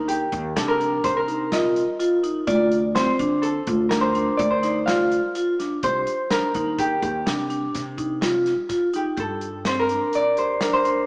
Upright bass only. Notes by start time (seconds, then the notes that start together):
Already playing: D#2
0.32 D#2
0.57 C3
1.04 C3
2.47 D2
3.20 D3
3.67 D2
4.39 D2
5.83 C2
6.55 D#2
7.03 D#2
7.26 C3
7.75 C3
9.18 G2